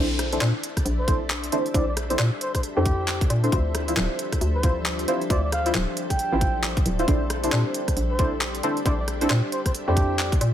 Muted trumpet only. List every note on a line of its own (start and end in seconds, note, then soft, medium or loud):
0.99 1.18 C5 medium
1.74 1.83 D5 medium
1.88 1.93 D5 medium
2.41 2.50 C5 medium
2.55 2.60 C5 medium
2.77 3.21 G4 loud
4.55 4.73 C5 medium
5.30 5.39 D5 medium
5.44 5.49 D5 medium
5.53 5.72 F5 loud
6.11 6.72 G5 loud
8.10 8.29 C5 medium
8.86 8.94 D5 medium
8.99 9.05 D5 medium
9.52 9.61 C5 medium
9.66 9.71 C5 medium
9.88 10.32 G4 loud